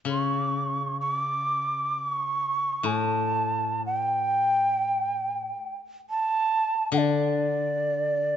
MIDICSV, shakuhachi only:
0, 0, Header, 1, 2, 480
1, 0, Start_track
1, 0, Tempo, 500000
1, 8032, End_track
2, 0, Start_track
2, 0, Title_t, "Shakuhachi"
2, 0, Program_c, 0, 77
2, 98, Note_on_c, 0, 85, 61
2, 931, Note_off_c, 0, 85, 0
2, 969, Note_on_c, 0, 85, 72
2, 1084, Note_off_c, 0, 85, 0
2, 1084, Note_on_c, 0, 86, 72
2, 1908, Note_off_c, 0, 86, 0
2, 1908, Note_on_c, 0, 86, 73
2, 2033, Note_off_c, 0, 86, 0
2, 2033, Note_on_c, 0, 85, 73
2, 2744, Note_on_c, 0, 81, 70
2, 2758, Note_off_c, 0, 85, 0
2, 3701, Note_off_c, 0, 81, 0
2, 3707, Note_on_c, 0, 79, 70
2, 5527, Note_off_c, 0, 79, 0
2, 5858, Note_on_c, 0, 81, 73
2, 6619, Note_off_c, 0, 81, 0
2, 6662, Note_on_c, 0, 78, 58
2, 6702, Note_on_c, 0, 74, 63
2, 6712, Note_off_c, 0, 78, 0
2, 8032, Note_off_c, 0, 74, 0
2, 8032, End_track
0, 0, End_of_file